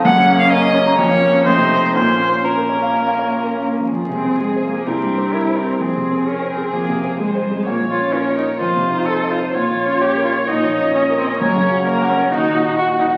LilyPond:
<<
  \new Staff \with { instrumentName = "Violin" } { \time 4/4 \key bes \minor \tempo 4 = 129 ges''8. f''16 ees''4 des''4 c''4 | c''4 bes'2~ bes'8 r8 | \key f \minor aes'2 bes'2 | aes'1 |
des''2 ees''2 | des''1 | \key ges \lydian bes'4 bes'4 ges'4 ges'4 | }
  \new Staff \with { instrumentName = "Viola" } { \time 4/4 \key bes \minor des'2 des'4 ees'4 | des'4 des'2~ des'8 r8 | \key f \minor aes'2 g'2 | aes'4 bes'4 aes'4 c''4 |
des''4 bes'4 c''2 | des''2 ees''2 | \key ges \lydian des''4 bes'4 ges'2 | }
  \new Staff \with { instrumentName = "Grand piano" } { \time 4/4 \key bes \minor ges,16 des16 bes16 des'16 bes'16 des'16 des''16 bes''16 f,16 f16 bes16 des'16 f,16 c16 a16 ees'16 | bes,16 f16 bes16 des'16 f'16 bes'16 des''16 f''16 des''16 f''16 des''16 f''16 bes'16 des'16 bes16 f16 | \key f \minor \tuplet 3/2 { f,8 c8 c'8 aes'8 c''8 aes'8 c,8 g,8 c'8 bes'8 c''8 bes'8 } | \tuplet 3/2 { f,8 c8 c'8 aes'8 c''8 aes'8 f,8 c8 c'8 aes'8 c''8 aes'8 } |
\tuplet 3/2 { bes,8 f8 des'8 bes'8 des''8 bes'8 f,8 c8 ees'8 c''8 ees''8 c''8 } | \tuplet 3/2 { bes,8 f8 des'8 des''8 bes'8 des''8 bes,8 f8 des'8 des''8 bes'8 des''8 } | \key ges \lydian \tuplet 3/2 { ges,8 des8 ges'8 des''8 ges''8 des''8 ees,8 bes,8 ges'8 ees''8 ges''8 ees''8 } | }
  \new Staff \with { instrumentName = "Cello" } { \time 4/4 \key bes \minor bes2 bes4 a4 | bes4 bes2~ bes8 r8 | \key f \minor f8 c'8 aes8 bes8 c'4 e'8 c'8 | c'4 des'8 c'8 bes4 aes8 g16 aes16 |
bes8 f'8 des'8 ees'8 f'4 a'8 f'8 | f'4 g'8 f'8 ees'4 des'8 c'16 des'16 | \key ges \lydian ges8 des'8 bes8 des'8 ees'4 ges'8 ees'8 | }
>>